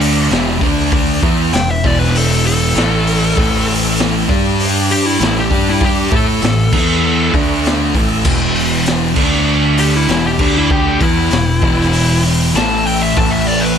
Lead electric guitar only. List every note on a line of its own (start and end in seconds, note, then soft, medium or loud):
1.54 1.68 G5 medium
1.71 1.85 E5 medium
1.86 1.99 D5 loud
1.99 2.14 B4 medium
2.17 2.45 A4 medium
2.47 3.64 A4 loud
4.91 5.06 G4 medium
5.06 5.35 E4 medium
5.40 5.67 G4 medium
5.70 5.83 E4 medium
5.85 6.13 G4 medium
6.16 7.32 A4 loud
9.79 9.96 G4 medium
9.96 10.25 E4 loud
10.27 10.55 G4 medium
10.58 10.71 E4 loud
10.71 11.01 G4 medium
11.03 12.21 E4 loud
12.56 12.85 A5 medium
12.87 13.01 G5 loud
13.02 13.16 E5 loud
13.17 13.32 A5 loud
13.31 13.46 E5 medium
13.48 13.62 D5 medium
13.61 13.76 B4 medium